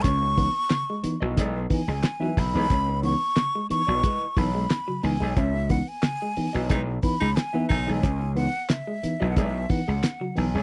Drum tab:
HH |xoxxxoxo|xoxxxoxo|xoxoxoxo|xoxxxoxo|
CP |--x---x-|--x---x-|--x---x-|--x---x-|
SD |--o---o-|--o---o-|--o---o-|--o---o-|
BD |oo--oo-o|o---oo--|oo--oo-o|o---oo--|